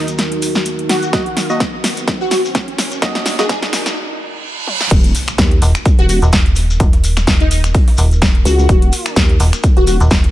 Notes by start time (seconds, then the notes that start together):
Already playing: D#3 D#4 F#4 A#4, riser
0.07 closed hi-hat, shekere
0.18 snare, closed hi-hat, shekere
0.32 closed hi-hat
0.42 open hi-hat, shekere
0.55 snare, shekere
0.65 closed hi-hat, shekere
0.79 closed hi-hat
0.89 F#4, snare, open hi-hat, shekere
1.02 closed hi-hat, shekere
1.13 A#3 F#4 D#5, kick, snare, closed hi-hat, shekere
1.26 closed hi-hat
1.37 snare, open hi-hat, shekere
1.50 A#3 F#4 D#5, shekere
1.60 kick, snare, closed hi-hat, shekere
1.84 snare, open hi-hat, shekere
1.96 closed hi-hat, shekere
2.08 kick, snare, closed hi-hat, shekere
2.21 F#4
2.31 F#4, snare, open hi-hat, shekere
2.45 shekere
2.55 kick, snare, closed hi-hat, shekere
2.68 closed hi-hat
2.78 snare, open hi-hat, shekere
2.91 closed hi-hat, shekere
3.02 A#3 F#4 D#5, kick, snare, closed hi-hat, shekere
3.15 snare, closed hi-hat
3.26 snare, open hi-hat, shekere
3.39 A#3 F#4 G#4 D#5, snare, shekere
3.49 G#4, kick, snare, closed hi-hat, shekere
3.62 snare, closed hi-hat
3.73 snare, open hi-hat, shekere
3.86 snare, closed hi-hat, shekere
3.97 reverse cymbal
4.67 high tom
4.81 snare
4.91 D#1 D#4 F#4 A#4, kick, closed hi-hat, crash, impact, shekere
5.04 closed hi-hat
5.15 closed hi-hat, open hi-hat, shekere
5.28 finger snap, closed hi-hat, shekere
5.38 D#2, kick, snare, closed hi-hat, shekere
5.51 closed hi-hat
5.62 D#1, snare, closed hi-hat, open hi-hat, shekere
5.75 finger snap, closed hi-hat, shekere
5.85 kick, closed hi-hat, shekere
5.99 D#1 F#4, closed hi-hat
6.09 F#4, closed hi-hat, open hi-hat, shekere
6.22 D#1, closed hi-hat, shekere
6.32 kick, snare, closed hi-hat, shekere
6.46 closed hi-hat
6.55 snare, closed hi-hat, open hi-hat, shekere
6.70 shekere
6.80 D#1, kick, closed hi-hat, shekere
6.93 snare, closed hi-hat
7.04 closed hi-hat, open hi-hat, shekere
7.17 finger snap, snare, shekere
7.27 D#1, kick, snare, closed hi-hat, shekere
7.40 D#4, closed hi-hat
7.51 D#4, closed hi-hat, open hi-hat, shekere
7.64 finger snap, closed hi-hat, shekere
7.75 kick, closed hi-hat, open hi-hat, shekere
7.88 snare, open hi-hat
7.97 D#1, closed hi-hat, open hi-hat, shekere
8.11 closed hi-hat, shekere
8.22 kick, snare, closed hi-hat, shekere
8.35 closed hi-hat
8.45 C#2 F#4, snare, closed hi-hat, open hi-hat, shekere
8.59 shekere
8.69 D#1, kick, closed hi-hat, shekere
8.82 closed hi-hat
8.92 closed hi-hat, open hi-hat, shekere
9.06 finger snap, closed hi-hat, shekere
9.16 D#2, kick, snare, closed hi-hat, shekere
9.29 closed hi-hat
9.40 D#1, snare, closed hi-hat, open hi-hat, shekere
9.53 finger snap, closed hi-hat, shekere
9.63 kick, closed hi-hat, shekere
9.77 D#1 F#4, closed hi-hat
9.87 F#4, closed hi-hat, open hi-hat, shekere
10.00 D#1, closed hi-hat, shekere
10.10 kick, snare, closed hi-hat, shekere
10.24 closed hi-hat